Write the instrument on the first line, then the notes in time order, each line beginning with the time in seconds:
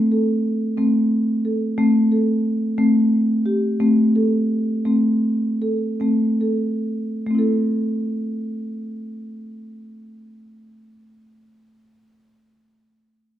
marimba
Already playing: A3 C4
0.12 A4
0.77 A3 C4
1.45 A4
1.78 A3 C4
2.12 A4
2.78 A3 C4
3.46 G4
3.80 A3 C4
4.16 A4
4.85 A3 C4
5.62 A4
6.00 A3 C4
6.41 A4
7.26 A3
7.31 C4
7.35 E4 A4